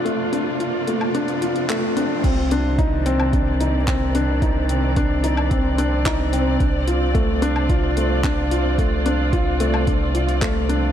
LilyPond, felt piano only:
\new Staff \with { instrumentName = "Felt piano" } { \time 4/4 \key c \dorian \tempo 4 = 110 a8 d'8 f'8 a8 d'8 f'8 a8 d'8 | c'8 d'8 ees'8 c'8 d'8 ees'8 c'8 d'8 | ees'8 c'8 d'8 ees'8 c'8 d'8 ees'8 c'8 | d'8 f'8 a8 d'8 f'8 a8 d'8 f'8 |
a8 d'8 f'8 a8 d'8 f'8 a8 d'8 | }